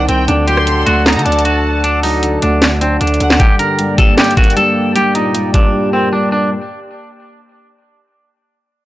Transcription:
Already playing: grand piano D#3 G3 C4 D#4, analog synth pad G3 C4 G5
0.08 808-style bass C2, clean electric guitar C4, violin section G5, closed hi-hat
0.28 808-style bass D2, grand piano D3, clean electric guitar D4, analog synth pad A4 D5 F#5 A5, closed hi-hat
0.47 grand piano F#3, clean electric guitar G4, violin section C6, closed hi-hat
0.57 cross-stick
0.67 grand piano D3, closed hi-hat
0.86 808-style bass D2, grand piano A3, clean electric guitar F#4, closed hi-hat
1.06 grand piano D3, clean electric guitar D#4, violin section A#5, snare, clap, closed hi-hat
1.13 808-style bass D3, closed hi-hat
1.19 closed hi-hat
1.25 808-style bass D2, grand piano D4, clean electric guitar D4, violin section A5, closed hi-hat
1.32 closed hi-hat
1.39 closed hi-hat
1.45 clean electric guitar F#4, closed hi-hat
1.84 clean electric guitar D4, closed hi-hat
2.03 grand piano F#3, clean electric guitar D#4, open hi-hat
2.23 grand piano D3, closed hi-hat
2.42 808-style bass D2, grand piano A3, clean electric guitar D4, closed hi-hat
2.62 grand piano D3, snare, clap, closed hi-hat
2.81 clean electric guitar C4, grand piano D4, closed hi-hat
3.01 808-style bass D2, grand piano D3, clean electric guitar D4, closed hi-hat
3.07 closed hi-hat
3.14 closed hi-hat
3.20 808-style bass D2, violin section F#5, closed hi-hat
3.30 snare, clap
3.40 grand piano G2, analog synth pad A#3 G4 D5 G5, clean electric guitar G4, kick, closed hi-hat
3.59 grand piano D3, clean electric guitar A#4, closed hi-hat
3.79 grand piano G2, closed hi-hat
3.98 grand piano G3, clean electric guitar A4, kick, closed hi-hat
4.18 grand piano G2, clean electric guitar G4, snare, clap, closed hi-hat
4.24 closed hi-hat
4.31 closed hi-hat
4.37 grand piano A#3, clean electric guitar F#4, kick, closed hi-hat
4.44 closed hi-hat
4.50 closed hi-hat
4.57 grand piano G2, clean electric guitar A4, closed hi-hat
4.96 grand piano G2, clean electric guitar G4, closed hi-hat
5.15 grand piano A#2, clean electric guitar D#4, closed hi-hat
5.35 grand piano G2, closed hi-hat
5.54 grand piano G3, clean electric guitar D4, kick, closed hi-hat
5.73 grand piano G2
5.93 grand piano A#3, clean electric guitar C4
6.13 grand piano G2, clean electric guitar D4
6.32 clean electric guitar D4

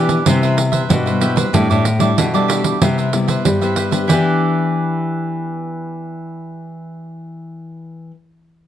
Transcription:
Already playing: nylon-string guitar B2 E3 B3 D4 G4, cavaquinho E4 G4 B4 D5
0.09 pandeiro
0.26 nylon-string guitar C3 G3 B3 E4, cavaquinho G4 B4 C5 E5, pandeiro
0.43 cavaquinho B4 C5 E5, pandeiro
0.57 muted cavaquinho stroke, pandeiro
0.72 cavaquinho B4 C5 E5, pandeiro
0.89 nylon-string guitar G2 B2 G3 B3 E4, pandeiro
1.06 cavaquinho B4 C5 E5, pandeiro
1.21 nylon-string guitar G3 B3 E4, cavaquinho G4 B4 C5 E5, pandeiro
1.36 cavaquinho B4 C5 E5, pandeiro
1.53 nylon-string guitar A2 G3 D4 E4, cavaquinho G4 A4 D5 E5, pandeiro
1.70 nylon-string guitar A2, cavaquinho A4 D5 E5, pandeiro
1.85 muted cavaquinho stroke, pandeiro
1.99 nylon-string guitar G3 D4 E4, cavaquinho A4 D5 E5, pandeiro
2.17 nylon-string guitar B2 E3, cavaquinho G4 A4 D5 E5, pandeiro
2.34 nylon-string guitar G3 D4 E4, cavaquinho A4 D5 E5, pandeiro
2.48 cavaquinho G4 A4 D5 E5, pandeiro
2.64 pandeiro
2.81 nylon-string guitar C3 G3 B3 E4, cavaquinho G4 B4 C5 E5, pandeiro
2.98 cavaquinho B4 C5 E5, pandeiro
3.13 nylon-string guitar G3 B3 E4, muted cavaquinho stroke, pandeiro
3.28 cavaquinho B4 C5 E5, pandeiro
3.45 nylon-string guitar G2 G3, pandeiro
3.61 nylon-string guitar G3 B3 E4, cavaquinho B4 C5 E5, pandeiro
3.76 cavaquinho G4 B4 C5 E5, pandeiro
3.91 nylon-string guitar B3 D4 G4, cavaquinho B4 C5 E5, pandeiro
4.07 nylon-string guitar E3 B3, cavaquinho E4 G4 B4 D5, pandeiro
4.12 nylon-string guitar D4 G4

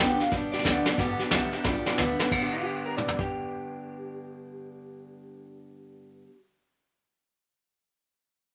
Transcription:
0.00 upright bass B1, steel-string acoustic guitar G2 D3 G3 B3 D4 G4, clean electric guitar G5
0.20 steel-string acoustic guitar G3 B3 D4 G4, clean electric guitar F5, snare
0.31 upright bass C2, steel-string acoustic guitar G3 B3 D4, clean electric guitar D5, kick, snare
0.36 steel-string acoustic guitar G4
0.52 upright bass E2, steel-string acoustic guitar B3 D4 G4, clean electric guitar D5, snare
0.57 steel-string acoustic guitar G3, snare
0.64 upright bass D2, steel-string acoustic guitar G2 D3 G3 B3 D4 G4, kick, snare, hi-hat pedal
0.85 steel-string acoustic guitar B3 D4 G4, muted upright bass stroke, snare
0.89 steel-string acoustic guitar G3
0.98 upright bass G1, steel-string acoustic guitar G2 D3 G3 B3 D4 G4, kick, snare
1.19 steel-string acoustic guitar B3 D4 G4, muted upright bass stroke, snare
1.23 steel-string acoustic guitar G3
1.30 upright bass B1, steel-string acoustic guitar G2 D3 G3 B3, clean electric guitar G4 E5, kick, snare, hi-hat pedal
1.35 steel-string acoustic guitar D4 G4
1.52 steel-string acoustic guitar B3 D4 G4, clean electric guitar G4 E5, snare
1.57 steel-string acoustic guitar G3
1.64 upright bass B1, steel-string acoustic guitar G3 B3 D4, clean electric guitar F4 D5, kick, snare
1.68 steel-string acoustic guitar G4
1.86 steel-string acoustic guitar G3 B3 D4 G4, clean electric guitar F4 D5, snare
1.98 upright bass D2, steel-string acoustic guitar G2 D3 G3 B3 D4 G4, clean electric guitar B4, kick, snare, hi-hat pedal
2.19 steel-string acoustic guitar G3 B3 D4 G4, muted upright bass stroke, snare
2.27 steel-string acoustic guitar G2 D3
2.31 steel-string acoustic guitar G3, kick, crash
2.37 steel-string acoustic guitar B3 D4
2.42 steel-string acoustic guitar G4
2.52 clean electric guitar F4
2.64 clean electric guitar G4
2.86 clean electric guitar A#4
2.97 clean electric guitar D5, mid tom
3.08 floor tom
3.19 clean electric guitar G4, kick

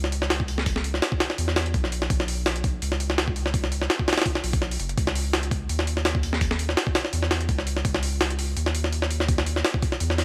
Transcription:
Already playing: sub bass C#2
0.04 snare
0.12 open hi-hat
0.22 snare
0.30 snare, open hi-hat
0.40 kick
0.48 open hi-hat
0.58 snare
0.66 kick, open hi-hat
0.76 snare
0.84 open hi-hat
0.94 snare
1.02 snare, open hi-hat
1.12 kick
1.20 snare, open hi-hat
1.30 snare
1.38 sub bass E2, open hi-hat
1.48 snare
1.56 snare, open hi-hat
1.66 closed hi-hat
1.74 sub bass B1, kick, open hi-hat
1.84 snare
1.92 open hi-hat
2.02 snare
2.10 sub bass B1, kick, open hi-hat
2.20 snare
2.28 open hi-hat
2.46 snare, open hi-hat
2.56 closed hi-hat
2.64 kick, open hi-hat
2.82 sub bass C#2, open hi-hat
2.92 snare
3.00 open hi-hat
3.10 snare
3.18 snare, open hi-hat
3.28 kick
3.36 open hi-hat
3.46 snare
3.54 kick, open hi-hat
3.64 snare
3.72 open hi-hat
3.82 snare
3.90 snare, open hi-hat
4.00 kick
4.08 snare, open hi-hat
4.13 snare, open hi-hat
4.18 snare, open hi-hat
4.22 snare, open hi-hat
4.26 kick, open hi-hat
4.35 snare
4.44 sub bass B1, open hi-hat
4.53 kick, open hi-hat
4.62 snare
4.71 open hi-hat
4.80 sub bass F#1, open hi-hat
4.89 closed hi-hat
4.97 sub bass C#2, kick, open hi-hat
5.07 snare
5.15 open hi-hat
5.33 snare, open hi-hat
5.43 closed hi-hat
5.51 kick, open hi-hat
5.69 sub bass D#2, open hi-hat
5.79 snare
5.87 open hi-hat
5.97 snare
6.05 snare, open hi-hat
6.15 kick
6.23 open hi-hat
6.33 snare
6.41 kick, open hi-hat
6.51 snare
6.59 open hi-hat
6.69 snare
6.77 snare, open hi-hat
6.87 kick
6.95 snare, open hi-hat
7.05 snare
7.13 sub bass E2, open hi-hat
7.23 snare
7.31 snare, open hi-hat
7.41 closed hi-hat
7.49 sub bass C#2, kick, open hi-hat
7.59 snare
7.67 open hi-hat
7.77 snare
7.85 sub bass C#2, kick, open hi-hat
7.94 snare
8.03 open hi-hat
8.21 snare, open hi-hat
8.30 closed hi-hat
8.39 open hi-hat
8.57 sub bass D#2, open hi-hat
8.66 snare
8.75 open hi-hat
8.84 snare
8.93 open hi-hat
9.02 snare
9.11 open hi-hat
9.20 snare
9.29 kick, open hi-hat
9.38 snare
9.46 open hi-hat
9.56 snare
9.65 snare, open hi-hat
9.74 kick
9.82 kick, open hi-hat
9.92 snare
10.00 sub bass E2, open hi-hat
10.10 snare
10.18 snare, open hi-hat

